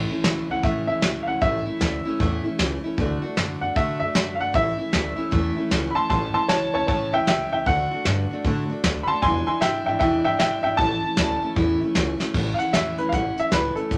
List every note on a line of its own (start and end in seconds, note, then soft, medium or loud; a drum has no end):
0.00 0.10 A2 medium
0.00 0.10 E3 medium
0.00 0.11 A3 medium
0.00 0.10 C#4 medium
0.10 0.24 A3 soft
0.10 0.25 C#4 medium
0.10 0.24 E4 medium
0.24 0.45 C#2 medium
0.24 0.49 E3 medium
0.24 0.50 A3 medium
0.24 0.50 C#4 medium
0.24 0.48 E4 medium
0.24 snare loud
0.48 0.61 C#2 loud
0.48 0.64 C#4 medium
0.48 0.64 E4 medium
0.48 0.64 F#5 medium
0.53 0.64 A3 soft
0.63 0.85 A1 medium
0.63 0.89 A2 loud
0.63 0.89 E3 loud
0.63 0.89 A3 loud
0.63 0.88 C#4 medium
0.63 0.87 E4 loud
0.63 0.86 E5 medium
0.63 kick loud
0.63 open hi-hat medium
0.87 1.01 C#2 medium
0.87 1.02 A3 soft
0.87 1.03 C#4 medium
0.87 1.03 E4 medium
0.87 1.26 E5 medium
1.02 1.24 C#2 medium
1.02 1.27 E3 medium
1.02 1.28 A3 medium
1.02 1.27 C#4 medium
1.02 1.25 E4 medium
1.02 snare loud
1.23 1.39 C#2 medium
1.23 1.41 E4 soft
1.23 1.25 F5 medium
1.28 1.41 A3 soft
1.28 1.42 C#4 soft
1.28 1.42 F#5 medium
1.41 1.63 A1 medium
1.41 1.66 A2 medium
1.41 1.67 E3 medium
1.41 1.67 A3 medium
1.41 1.66 C#4 loud
1.41 1.64 E4 medium
1.41 2.56 E5 loud
1.41 kick loud
1.41 open hi-hat medium
1.65 1.79 A3 soft
1.65 1.80 C#4 medium
1.65 1.81 E4 medium
1.65 muted upright bass stroke medium
1.79 2.02 D2 medium
1.79 2.05 E3 medium
1.79 2.05 A3 medium
1.79 2.06 C#4 medium
1.79 2.04 E4 medium
1.79 snare loud
1.79 open hi-hat medium
2.05 2.20 A3 medium
2.05 2.20 C#4 medium
2.05 2.20 E4 medium
2.05 muted upright bass stroke medium
2.20 2.41 E2 loud
2.20 2.45 A2 loud
2.20 2.45 E3 medium
2.20 2.45 A3 loud
2.20 2.44 C#4 loud
2.20 2.42 E4 loud
2.20 kick loud
2.20 open hi-hat medium
2.43 2.59 A3 medium
2.43 2.60 C#4 medium
2.43 2.58 E4 medium
2.43 muted upright bass stroke medium
2.58 2.80 C#2 medium
2.58 2.84 E3 medium
2.58 2.84 A3 medium
2.58 2.84 C#4 medium
2.58 2.83 E4 medium
2.58 snare loud
2.58 open hi-hat medium
2.84 2.98 A3 medium
2.84 2.99 C#4 medium
2.84 2.98 E4 medium
2.84 muted upright bass stroke medium
2.98 3.19 D2 loud
2.98 3.23 D3 medium
2.98 3.23 A3 loud
2.98 3.22 D4 loud
2.98 3.21 F#4 loud
2.98 kick loud
2.98 open hi-hat medium
3.22 3.37 A3 medium
3.22 3.38 D4 medium
3.22 3.37 F#4 medium
3.22 muted upright bass stroke medium
3.37 3.58 F#2 loud
3.37 3.62 D3 medium
3.37 3.63 A3 medium
3.37 3.62 D4 medium
3.37 3.61 F#4 medium
3.37 snare loud
3.61 3.74 F#2 medium
3.61 3.76 A3 soft
3.61 3.76 D4 medium
3.61 3.77 F#4 medium
3.61 3.76 F#5 medium
3.76 3.97 D2 loud
3.76 4.01 D3 medium
3.76 4.02 A3 medium
3.76 4.01 D4 medium
3.76 4.00 F#4 medium
3.76 3.98 E5 loud
3.76 kick loud
3.76 open hi-hat medium
4.00 4.13 F#2 loud
4.00 4.15 D4 medium
4.00 4.15 F#4 medium
4.00 4.38 E5 medium
4.04 4.14 A3 soft
4.14 4.36 F#2 medium
4.14 4.39 D3 medium
4.14 4.40 A3 medium
4.14 4.39 D4 medium
4.14 4.38 F#4 medium
4.14 snare loud
4.35 4.52 G1 medium
4.35 4.54 F#4 soft
4.35 4.38 F5 medium
4.41 4.53 A3 soft
4.41 4.54 D4 medium
4.41 4.54 F#5 medium
4.53 4.75 A1 medium
4.53 4.79 A2 medium
4.53 4.79 E3 medium
4.53 4.79 A3 medium
4.53 4.79 C#4 medium
4.53 4.77 E4 medium
4.53 5.69 E5 loud
4.53 kick loud
4.53 open hi-hat medium
4.78 4.92 A3 soft
4.78 4.93 C#4 medium
4.78 4.93 E4 medium
4.78 muted upright bass stroke medium
4.92 5.15 D2 medium
4.92 5.18 E3 medium
4.92 5.18 A3 medium
4.92 5.17 C#4 medium
4.92 5.15 E4 medium
4.92 snare loud
4.92 open hi-hat soft
5.16 5.31 A3 medium
5.16 5.32 C#4 medium
5.16 5.32 E4 medium
5.16 muted upright bass stroke medium
5.31 5.53 E2 medium
5.31 5.57 A2 medium
5.31 5.57 E3 loud
5.31 5.57 A3 loud
5.31 5.57 C#4 loud
5.31 5.55 E4 loud
5.31 kick loud
5.31 open hi-hat medium
5.56 5.72 A3 medium
5.56 5.72 C#4 medium
5.56 5.71 E4 medium
5.56 muted upright bass stroke medium
5.71 5.92 C#2 medium
5.71 5.96 E3 medium
5.71 5.97 A3 medium
5.71 5.95 C#4 medium
5.71 5.94 E4 medium
5.71 snare loud
5.71 open hi-hat medium
5.91 5.93 B5 medium
5.95 6.10 A3 soft
5.95 6.11 C#4 soft
5.95 6.10 E4 soft
5.95 6.08 A5 medium
5.95 6.09 C6 loud
5.95 muted upright bass stroke medium
6.10 6.31 A1 loud
6.10 6.35 A2 medium
6.10 6.36 E3 medium
6.10 6.36 A3 medium
6.10 6.35 C#4 medium
6.10 6.33 E4 medium
6.10 6.33 A5 medium
6.10 6.33 C6 medium
6.10 kick loud
6.10 open hi-hat medium
6.34 6.50 A3 soft
6.34 6.50 C#4 soft
6.34 6.49 E4 medium
6.34 6.48 A5 medium
6.34 6.49 C6 medium
6.34 muted upright bass stroke medium
6.48 6.70 C#2 medium
6.48 6.74 E3 medium
6.48 6.75 A3 medium
6.48 6.75 C#4 medium
6.48 6.72 C#5 medium
6.48 6.73 A5 medium
6.48 snare loud
6.48 open hi-hat medium
6.53 6.73 E4 medium
6.74 6.86 C#2 loud
6.74 6.88 A3 soft
6.74 6.89 C#4 medium
6.74 6.89 E4 medium
6.74 6.86 C#5 medium
6.74 6.87 A5 medium
6.87 7.09 A1 medium
6.87 7.13 A2 medium
6.87 7.13 E3 medium
6.87 7.14 A3 medium
6.87 7.13 C#4 loud
6.87 7.11 E4 loud
6.87 7.11 C#5 medium
6.87 7.12 A5 medium
6.87 kick loud
6.87 open hi-hat medium
7.12 7.25 C#2 medium
7.12 7.28 A3 soft
7.12 7.28 C#4 medium
7.12 7.27 E4 medium
7.12 7.26 E5 medium
7.12 7.27 G5 loud
7.27 7.49 C#2 loud
7.27 7.52 E3 medium
7.27 7.53 A3 medium
7.27 7.53 C#4 medium
7.27 7.52 E4 medium
7.27 7.51 E5 medium
7.27 7.51 G5 loud
7.27 snare loud
7.52 7.64 C#2 medium
7.52 7.66 A3 soft
7.52 7.68 C#4 soft
7.52 7.67 E4 medium
7.52 7.66 E5 medium
7.52 7.66 G5 medium
7.66 7.87 D2 loud
7.66 7.92 D3 medium
7.66 7.92 A3 medium
7.66 7.92 D4 medium
7.66 7.90 F#4 medium
7.66 8.42 F#5 loud
7.66 kick loud
7.66 open hi-hat medium
7.91 8.06 A3 soft
7.91 8.07 D4 soft
7.91 8.06 F#4 medium
7.91 muted upright bass stroke medium
8.05 8.27 G2 medium
8.05 8.31 D3 medium
8.05 8.31 A3 medium
8.05 8.32 D4 medium
8.05 8.30 F#4 medium
8.05 snare loud
8.31 8.45 A3 soft
8.31 8.45 D4 medium
8.31 8.45 F#4 medium
8.31 muted upright bass stroke medium
8.44 8.66 A2 medium
8.44 8.70 D3 loud
8.44 8.70 A3 loud
8.44 8.70 D4 loud
8.44 8.68 F#4 loud
8.44 kick loud
8.44 open hi-hat medium
8.69 8.84 A3 medium
8.69 8.85 D4 medium
8.69 8.84 F#4 medium
8.69 muted upright bass stroke medium
8.84 9.05 D2 medium
8.84 9.09 D3 medium
8.84 9.09 A3 medium
8.84 9.10 D4 medium
8.84 9.09 F#4 medium
8.84 snare loud
9.03 9.06 B5 medium
9.03 9.21 C6 loud
9.08 9.24 D4 soft
9.08 9.23 F#4 soft
9.08 9.21 A5 medium
9.08 muted upright bass stroke medium
9.13 9.25 A3 soft
9.22 9.44 E1 loud
9.22 9.48 E2 medium
9.22 9.48 B2 medium
9.22 9.48 E3 medium
9.22 9.49 G#3 loud
9.22 9.48 D4 medium
9.22 9.45 G#5 medium
9.22 9.45 C6 loud
9.22 kick loud
9.22 open hi-hat medium
9.26 9.47 E4 medium
9.47 9.63 G#3 medium
9.47 9.63 D4 soft
9.47 9.62 E4 medium
9.47 9.61 G#5 medium
9.47 9.61 C6 loud
9.51 9.62 E3 soft
9.61 9.83 G#1 medium
9.61 9.87 E3 medium
9.61 9.87 G#3 medium
9.61 9.84 E5 loud
9.61 9.85 G5 loud
9.61 snare loud
9.61 open hi-hat medium
9.65 9.87 D4 medium
9.65 9.86 E4 medium
9.86 9.99 G#1 medium
9.86 10.01 G#3 medium
9.86 10.01 D4 medium
9.86 10.01 E4 medium
9.86 9.98 E5 medium
9.86 9.98 G5 medium
9.90 10.00 E3 soft
9.99 10.22 E1 medium
9.99 10.25 E2 loud
9.99 10.26 B2 loud
9.99 10.26 E3 loud
9.99 10.26 G#3 medium
9.99 10.26 D4 loud
9.99 10.23 E5 medium
9.99 10.24 G5 medium
9.99 kick loud
9.99 open hi-hat medium
10.03 10.25 E4 loud
10.24 10.38 G#1 medium
10.24 10.40 E3 soft
10.24 10.41 G#3 medium
10.24 10.40 D4 medium
10.24 10.40 E4 medium
10.24 10.38 E5 loud
10.24 10.38 G5 loud
10.39 10.61 G#1 medium
10.39 10.65 E3 medium
10.39 10.65 G#3 medium
10.39 10.65 D4 medium
10.39 10.61 E5 medium
10.39 10.62 G5 loud
10.39 snare loud
10.39 open hi-hat medium
10.44 10.64 E4 medium
10.63 10.76 G#1 medium
10.63 10.80 G#3 soft
10.63 10.80 D4 soft
10.63 10.79 E4 medium
10.63 10.77 E5 medium
10.63 10.78 G5 medium
10.68 10.79 E3 soft
10.77 11.00 A1 loud
10.77 11.04 A2 medium
10.77 11.04 E3 medium
10.77 11.04 A3 medium
10.77 11.04 C#4 medium
10.77 11.54 A5 loud
10.77 kick loud
10.77 open hi-hat medium
10.82 11.03 E4 medium
11.03 11.18 A3 soft
11.03 11.19 C#4 medium
11.03 11.18 E4 medium
11.03 muted upright bass stroke medium
11.17 11.39 D2 loud
11.17 11.43 E3 medium
11.17 11.43 A3 medium
11.17 11.42 C#4 medium
11.17 11.41 E4 medium
11.17 snare loud
11.42 11.56 A3 medium
11.42 11.57 C#4 medium
11.42 11.57 E4 medium
11.42 muted upright bass stroke medium
11.56 11.78 E2 medium
11.56 11.81 A2 loud
11.56 11.81 E3 medium
11.56 11.81 A3 loud
11.56 11.82 C#4 loud
11.56 11.80 E4 loud
11.56 kick loud
11.56 open hi-hat soft
11.81 11.94 A3 medium
11.81 11.95 C#4 medium
11.81 11.96 E4 medium
11.81 muted upright bass stroke medium
11.95 12.17 C#2 medium
11.95 12.20 E3 medium
11.95 12.20 A3 medium
11.95 12.20 C#4 medium
11.95 12.18 E4 medium
11.95 snare loud
12.19 12.34 A3 medium
12.19 12.35 C#4 medium
12.19 12.34 E4 medium
12.19 snare medium
12.34 12.54 A1 medium
12.34 12.59 A2 medium
12.34 12.60 E3 medium
12.34 12.60 A3 medium
12.34 12.60 C#4 medium
12.34 12.59 E4 medium
12.34 kick loud
12.34 crash loud
12.54 12.57 F5 medium
12.59 12.75 C#4 soft
12.59 12.74 E4 medium
12.59 12.73 F#5 medium
12.59 closed hi-hat medium
12.63 12.74 A3 soft
12.73 12.94 E2 medium
12.73 12.99 A2 medium
12.73 12.99 E3 medium
12.73 12.99 A3 medium
12.73 12.99 C#4 medium
12.73 12.97 E4 medium
12.73 12.97 E5 loud
12.73 snare loud
12.73 closed hi-hat medium
12.98 13.10 C#2 medium
12.98 13.12 A3 soft
12.98 13.13 C#4 medium
12.98 13.13 E4 medium
12.98 13.12 B4 medium
12.98 closed hi-hat medium
13.09 13.32 A1 medium
13.09 13.37 E3 medium
13.09 13.12 F5 medium
13.09 kick loud
13.09 closed hi-hat medium
13.13 13.38 A3 medium
13.13 13.37 C#4 medium
13.13 13.35 E4 medium
13.13 13.37 F#5 medium
13.36 13.52 A3 soft
13.36 13.52 C#4 medium
13.36 13.51 E4 soft
13.36 13.53 E5 loud
13.36 muted upright bass stroke medium
13.36 closed hi-hat medium
13.52 13.71 C#2 medium
13.52 13.77 A2 medium
13.52 13.77 E3 medium
13.52 13.77 A3 medium
13.52 13.76 C#4 medium
13.52 13.75 E4 medium
13.52 13.76 B4 loud
13.52 snare loud
13.52 closed hi-hat medium
13.76 13.91 A3 soft
13.76 13.92 C#4 soft
13.76 13.91 E4 soft
13.76 13.98 A4 medium
13.76 muted upright bass stroke medium
13.76 closed hi-hat medium
13.91 13.98 A1 loud
13.91 13.98 A2 medium
13.91 13.98 E3 medium
13.91 13.98 A3 medium
13.91 13.98 C#4 medium
13.91 13.98 E4 medium
13.91 kick loud
13.91 closed hi-hat medium